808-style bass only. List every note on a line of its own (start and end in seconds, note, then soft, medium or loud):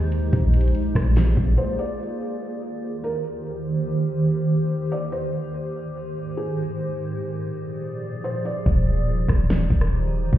0.00 0.30 D#2 loud
0.33 0.73 A#1 loud
0.95 1.35 A#1 loud
1.37 1.57 A#1 loud
8.66 9.26 D#1 loud
9.29 9.69 D#1 loud
9.70 10.30 D#1 loud
10.33 10.38 D#1 loud